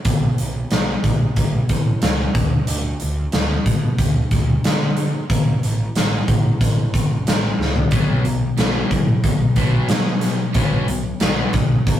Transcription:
0.05 picked electric bass B1, kick, closed hi-hat
0.38 picked electric bass B1, closed hi-hat
0.71 picked electric bass B1, snare, closed hi-hat
1.04 picked electric bass B1, kick, closed hi-hat
1.36 picked electric bass B1, kick, closed hi-hat
1.69 picked electric bass A1, kick, closed hi-hat
2.02 picked electric bass C#2, snare, closed hi-hat
2.34 picked electric bass D2, kick, closed hi-hat
2.67 picked electric bass D2, closed hi-hat
3.00 picked electric bass D2, closed hi-hat
3.32 picked electric bass D2, snare, closed hi-hat
3.66 picked electric bass B2, kick, closed hi-hat
3.98 picked electric bass D2, kick, closed hi-hat
4.31 picked electric bass D2, kick, closed hi-hat
4.64 picked electric bass D3, snare, closed hi-hat
4.97 closed hi-hat
5.30 picked electric bass A1, kick, closed hi-hat
5.63 picked electric bass A1, closed hi-hat
5.95 picked electric bass A1, snare, closed hi-hat
6.28 picked electric bass A1, kick, closed hi-hat
6.61 picked electric bass A1, kick, closed hi-hat
6.94 picked electric bass G1, kick, closed hi-hat
7.26 picked electric bass A1, snare, closed hi-hat
7.58 picked electric bass C#2, snare
7.76 floor tom
7.91 picked electric bass B1, overdriven electric guitar B2 F#3 B3, kick, closed hi-hat
8.25 picked electric bass B1, overdriven electric guitar B2 F#3, closed hi-hat
8.58 picked electric bass B1, overdriven electric guitar B2 F#3 B3, snare, closed hi-hat
8.90 picked electric bass A2, overdriven electric guitar B2 F#3, kick, closed hi-hat
9.24 picked electric bass B1, overdriven electric guitar B2 F#3, kick, closed hi-hat
9.56 picked electric bass B1, overdriven electric guitar B2 F#3 B3, kick, closed hi-hat
9.89 picked electric bass B2, overdriven electric guitar B2 F#3, snare, closed hi-hat
10.21 overdriven electric guitar B2 F#3, snare, closed hi-hat
10.54 picked electric bass B1, overdriven electric guitar B2 F#3 B3, kick, closed hi-hat
10.88 picked electric bass B1, overdriven electric guitar B2 F#3, closed hi-hat
11.20 picked electric bass B1, overdriven electric guitar B2 F#3 B3, snare, closed hi-hat
11.53 picked electric bass B1, overdriven electric guitar B2 F#3, kick, closed hi-hat
11.87 picked electric bass B1, overdriven electric guitar B2 F#3, kick, closed hi-hat

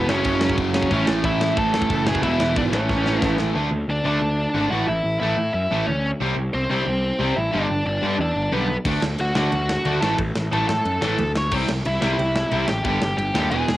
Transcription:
0.09 picked electric bass F#1, overdriven electric guitar F#2 C#3 F#3, lead electric guitar C#4 C#5, snare
0.24 picked electric bass F#1, kick, crash
0.41 snare
0.49 kick
0.57 picked electric bass F#1, kick, crash
0.74 lead electric guitar C#4 C#5, snare
0.82 kick
0.91 picked electric bass A1, overdriven electric guitar A2 E3 A3, kick, crash
1.07 picked electric bass A1, snare
1.24 picked electric bass A1, lead electric guitar E4 E5, kick, crash
1.41 snare
1.57 picked electric bass A1, lead electric guitar A4 A5, kick, crash
1.74 snare
1.82 kick
1.90 picked electric bass F#1, kick, crash
2.06 overdriven electric guitar A2 E3 A3, lead electric guitar G#4 G#5, snare
2.15 kick
2.23 picked electric bass E1, overdriven electric guitar E2 B2 E3, lead electric guitar E4 E5, kick, crash
2.40 picked electric bass E1, snare
2.56 picked electric bass G#1, lead electric guitar D4 D5, kick, crash
2.71 picked electric bass A1, overdriven electric guitar A2 E3, lead electric guitar C#4 C#5, snare
2.75 overdriven electric guitar A3
2.89 picked electric bass A1, kick, snare
3.06 snare
3.20 picked electric bass A1, lead electric guitar B4, kick, snare
3.38 snare
3.55 picked electric bass D2, overdriven electric guitar D3 A3 D4
3.71 picked electric bass D2
3.88 picked electric bass D2, lead electric guitar D4 D5
4.05 picked electric bass D2, overdriven electric guitar D3 A3 D4, lead electric guitar D4 D5
4.22 picked electric bass D2
4.54 picked electric bass G#1, overdriven electric guitar D3 A3 D4
4.70 picked electric bass A1, overdriven electric guitar A2 E3 A3, lead electric guitar F#4 F#5
4.87 picked electric bass A1, lead electric guitar E4 E5
5.04 picked electric bass A1
5.20 picked electric bass A1, overdriven electric guitar A2 E3 A3, lead electric guitar E4 E5
5.37 picked electric bass A2
5.53 picked electric bass F#2, lead electric guitar E4 E5
5.71 picked electric bass A1, overdriven electric guitar A2 E3 A3
5.86 picked electric bass D2, lead electric guitar C#4 C#5
6.20 picked electric bass C2, overdriven electric guitar C3 G3 C4
6.36 picked electric bass C2
6.54 picked electric bass C2, lead electric guitar C4 C5
6.70 picked electric bass C2, overdriven electric guitar C3 G3 C4, lead electric guitar C4 C5
6.86 picked electric bass C2
7.19 picked electric bass C2, overdriven electric guitar C3 G3 C4
7.36 picked electric bass A1, lead electric guitar E4 E5
7.52 picked electric bass G1, overdriven electric guitar G2 D3 G3, lead electric guitar D4 D5
7.70 picked electric bass G1
7.86 picked electric bass G1, lead electric guitar D4 D5
8.02 overdriven electric guitar G2 D3 G3, picked electric bass G2
8.19 picked electric bass E2, lead electric guitar D4 D5
8.36 picked electric bass G1
8.52 picked electric bass B1, overdriven electric guitar G2 D3 G3, lead electric guitar B3 B4
8.85 picked electric bass D2, overdriven electric guitar D3 A3 D4, kick, crash
9.02 picked electric bass D2, snare
9.19 picked electric bass D2, lead electric guitar F#4 F#5, ride
9.35 picked electric bass D2, overdriven electric guitar D3 A3 D4, lead electric guitar F#4 F#5, snare
9.52 picked electric bass D2, ride
9.69 snare
9.85 picked electric bass D2, overdriven electric guitar D3 A3 D4, ride
10.01 picked electric bass A1, overdriven electric guitar A2 E3 A3, lead electric guitar A4 A5, snare
10.18 picked electric bass A1, kick, ride
10.35 picked electric bass A1, snare
10.52 picked electric bass A1, overdriven electric guitar A2 E3 A3, lead electric guitar A4 A5, ride
10.68 picked electric bass A2, lead electric guitar A4 A5, snare
10.85 picked electric bass F#2, ride
11.02 picked electric bass A1, overdriven electric guitar A2 E3 A3, snare
11.18 picked electric bass D2, ride
11.35 lead electric guitar C#5 C#6, snare
11.51 picked electric bass C2, overdriven electric guitar C3 G3 C4, kick, crash
11.69 picked electric bass C2, snare
11.85 picked electric bass C2, lead electric guitar E4 E5, ride
12.02 picked electric bass C2, overdriven electric guitar C3 G3 C4, lead electric guitar E4 E5, snare
12.19 picked electric bass C2, ride
12.36 snare
12.51 picked electric bass C2, overdriven electric guitar C3 G3 C4, ride
12.68 picked electric bass A1, lead electric guitar G4 G5, snare
12.84 picked electric bass G1, overdriven electric guitar G2 D3 G3, lead electric guitar G4 G5, kick, ride
13.02 picked electric bass G1, snare
13.17 picked electric bass G1, lead electric guitar G4 G5, ride
13.34 picked electric bass D#2, overdriven electric guitar G2 D3 G3, snare
13.51 picked electric bass E1, overdriven electric guitar E2 B2 E3, lead electric guitar G#4 G#5, ride
13.68 picked electric bass E1, snare

